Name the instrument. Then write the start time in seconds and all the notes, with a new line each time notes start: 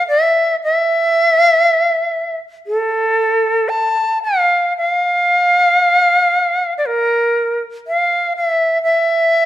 shakuhachi
0.08 E5
0.64 E5
2.67 A4
3.69 A5
4.23 F5
4.77 F5
6.78 D5
6.86 A#4
7.87 F5
8.36 E5
8.83 E5